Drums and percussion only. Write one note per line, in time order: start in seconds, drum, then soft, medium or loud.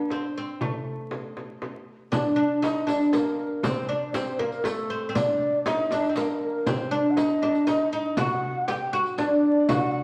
0.10 frame drum medium
0.61 frame drum medium
1.11 frame drum medium
1.37 frame drum medium
1.62 frame drum medium
2.12 riq medium
2.12 frame drum medium
2.63 riq medium
2.63 frame drum medium
2.88 riq soft
2.88 frame drum medium
3.01 riq soft
3.13 riq medium
3.13 frame drum medium
3.63 riq medium
3.63 frame drum loud
4.14 riq medium
4.14 frame drum medium
4.39 frame drum medium
4.52 riq soft
4.64 riq medium
4.64 frame drum medium
5.15 riq medium
5.15 frame drum medium
5.66 riq medium
5.66 frame drum medium
5.91 riq medium
5.91 frame drum medium
6.04 riq soft
6.16 riq medium
6.16 frame drum medium
6.66 riq medium
6.66 frame drum medium
7.17 riq medium
7.17 frame drum medium
7.42 frame drum medium
7.55 riq soft
7.67 riq medium
7.67 frame drum medium
7.92 riq soft
8.17 riq medium
8.17 frame drum loud
8.68 riq soft
8.68 frame drum medium
8.93 frame drum medium
9.06 riq soft
9.18 riq soft
9.18 frame drum medium
9.69 riq medium
9.69 frame drum loud